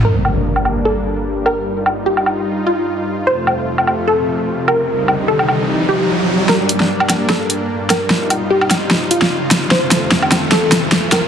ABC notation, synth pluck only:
X:1
M:4/4
L:1/8
Q:"Swing 16ths" 1/4=149
K:Gm
V:1 name="Synth pluck"
B4 A3 B- | B2 G3 F3 | c4 A3 B- | B2 A3 G3 |
B4 A3 B- | B2 G3 F3 | c4 A3 B |]